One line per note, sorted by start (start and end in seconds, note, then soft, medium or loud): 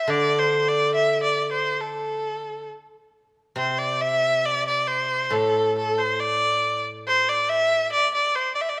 0.00 0.12 E5 medium
0.08 2.68 D3 medium
0.08 0.41 D5 medium
0.39 0.70 C5 medium
0.68 0.94 D5 medium
0.95 1.21 E5 medium
1.23 1.50 D5 medium
1.52 1.82 C5 medium
1.81 2.69 A4 medium
3.56 5.32 C3 medium
3.56 3.80 C5 medium
3.78 4.03 D5 medium
4.02 4.47 E5 medium
4.46 4.67 D5 medium
4.68 4.89 D5 medium
4.87 5.34 C5 medium
5.30 7.89 A2 medium
5.30 5.76 A4 medium
5.78 6.00 A4 medium
5.99 6.21 C5 medium
6.20 6.83 D5 loud
7.08 7.31 C5 loud
7.29 7.51 D5 medium
7.49 7.91 E5 loud
7.92 8.11 D5 loud
8.15 8.37 D5 medium
8.35 8.54 C5 medium
8.55 8.63 D5 medium
8.61 8.71 E5 medium
8.69 8.79 D5 medium